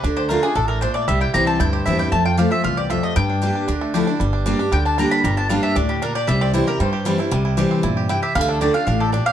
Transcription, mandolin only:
\new Staff \with { instrumentName = "Mandolin" } { \time 4/4 \key g \dorian \tempo 4 = 231 r8 c''8 bes'8 gis'8 a'8 bes'8 c''8 d''8 | e''8 g''8 bes''8 a''8 g''8 c''8 e''8 g''8 | a''8 g''8 f''8 e''8 f''8 d''8 e''8 ees''8 | g''2 r2 |
r2 g''8 a''8 bes''8 b''8 | bes''8 a''8 f''8 e''8 d''8 g'8 bes'8 d''8 | e''8 d''8 c''8 bes'8 c''2 | r2. g''8 e''8 |
f''8 a'8 d''8 f''8 f''8 a'8 d''8 f''8 | }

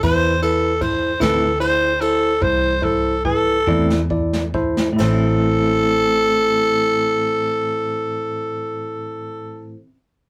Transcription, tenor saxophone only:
\new Staff \with { instrumentName = "Tenor saxophone" } { \time 12/8 \key a \minor \tempo 4. = 45 c''8 a'8 c''8 a'8 c''8 a'8 c''8 a'8 a'4 r4 | a'1. | }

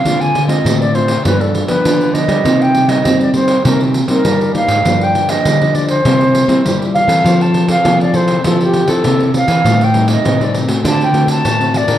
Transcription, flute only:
\new Staff \with { instrumentName = "Flute" } { \time 4/4 \key g \minor \tempo 4 = 100 f''16 aes''8 ees''8 d''16 c''8 b'16 a'8 b'8. ees''8~ | ees''16 g''8 ees''8 d''16 c''8 bes'16 r8 bes'8. f''8~ | f''16 g''8 ees''8. d''16 c''4. r16 f''8~ | f''16 a''8 f''8 d''16 c''8 a'16 g'8 a'8. f''8~ |
f''16 g''8 ees''8 d''16 r8 a''16 g''8 a''8. d''8 | }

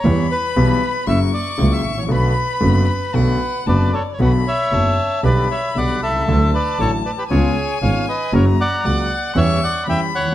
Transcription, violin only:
\new Staff \with { instrumentName = "Violin" } { \time 4/4 \key b \minor \tempo 4 = 116 b''2 cis'''2 | b''2 fis''4 a''8 d''8 | b''4 a''4 b''2 | a''2 gis''2 |
ais''4 fis''4 cis'''4 b''4 | }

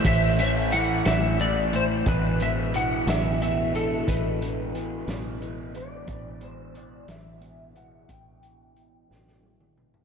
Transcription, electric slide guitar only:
\new Staff \with { instrumentName = "Electric slide guitar" } { \time 6/8 \key e \minor \tempo 4. = 60 e''8 e''8 fis''8 e''8 d''8 c''8 | b'8 e''8 fis''8 e''8 e''8 a'8 | b'2~ b'8 d''8 | d''8 c''8 d''8 e''4 fis''8 |
g''2 r4 | }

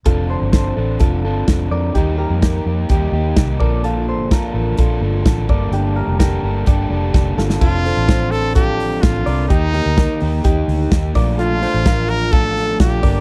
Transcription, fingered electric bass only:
\new Staff \with { instrumentName = "Fingered electric bass" } { \clef bass \time 4/4 \key f \mixolydian \tempo 4 = 127 f,,8. g,,8. a,,8 f,,8 g,,8 f,,8 f,8 | ees,8. f,8. f,8 ees,8 ees,8 c,8 bes,,8~ | bes,,8. g,,8. a,,8 bes,,8 g,,8 a,,8 g,,8 | g,,8. f,,8. g,,8 g,,8 f,,8 f,,8 g,,8 |
f,,8. a,,2~ a,,16 a,,8 c,8 | ees,8. d,8 r16 ees,8 ees,8 d,8 ees,8 bes,,8~ | bes,,8. a,,2~ a,,16 bes,,8 g,,8 | }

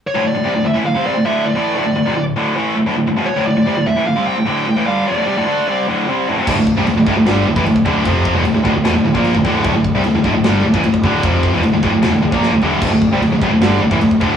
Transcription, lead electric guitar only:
\new Staff \with { instrumentName = "Lead electric guitar" } { \time 4/4 \key d \minor \tempo 4 = 151 cis''8 d''4 e''8 f''8 d''8 e''8 d''8~ | d''4. r2 r8 | cis''8 d''4 e''8 f''8 g''4. | f''8 d''2 r4. |
r1 | r1 | r1 | r1 |
r1 | }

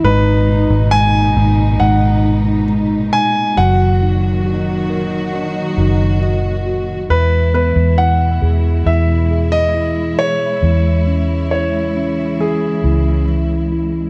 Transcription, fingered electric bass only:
\new Staff \with { instrumentName = "Fingered electric bass" } { \clef bass \time 4/4 \key e \lydian \tempo 4 = 68 gis,,8. gis,,8. gis,,8 gis,,4. r8 | fis,,2~ fis,,8 fis,,4. | e,8. e,8. e,8 e,4. r8 | e,2~ e,8 cis,4. | }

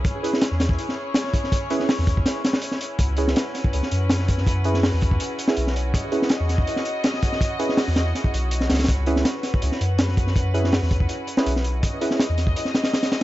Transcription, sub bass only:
\new Staff \with { instrumentName = "Sub bass" } { \clef bass \time 4/4 \key cis \minor \tempo 4 = 163 b,,16 r4 e,8. r2 | r4 r16 e,8. r2 | cis,4 r4 cis,16 r16 fis,4.~ | fis,4~ fis,16 e,8. r4 b,,4~ |
b,,16 r4 e,8. r2 | r4 r16 e,8. r8 b,,4 cis,8 | cis,4 r4 cis,16 r16 fis,4.~ | fis,4~ fis,16 e,8. r4 b,,4~ |
b,,16 r4 e,8. r2 | }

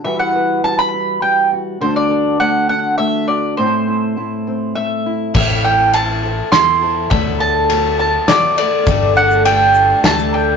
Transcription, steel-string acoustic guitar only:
\new Staff \with { instrumentName = "Steel-string acoustic guitar" } { \time 3/4 \key a \dorian \tempo 4 = 102 << { <g e' fis' b'>8 b'8 fis'8 e'4 fis'8 | <a d' fis' a'>8 a'8 fis'8 d'4 fis'8 | <a c' e'>8 e'8 e'8 c'4 e'8~ | e'2. |
r2. | r2. | } \\ { e4 g4 g4 | d4 a4 a4 | a,4 a4 a4 | r2. |
r2. | r2. | } >> }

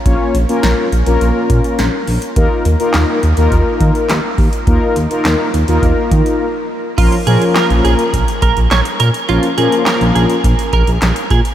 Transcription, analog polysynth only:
\new Staff \with { instrumentName = "Analog polysynth" } { \time 4/4 \key bes \minor \tempo 4 = 104 <bes des' f' des''>8 r16 <bes des' f' bes'>8. r16 <bes des' f' bes'>4~ <bes des' f' bes'>16 r4 | <bes ees' f' bes'>8 r16 <bes ees' f' bes'>8. r16 <bes ees' f' bes'>4~ <bes ees' f' bes'>16 r4 | <bes ees' f' bes'>8 r16 <bes ees' f' bes'>8. r16 <bes ees' f' bes'>4~ <bes ees' f' bes'>16 r4 | <f bes des' f' bes'>16 r16 <f bes des' f' bes'>4~ <f bes des' f' bes'>16 r2 r16 |
<f bes des' f' bes'>16 r16 <f bes des' f' bes'>4~ <f bes des' f' bes'>16 r2 r16 | }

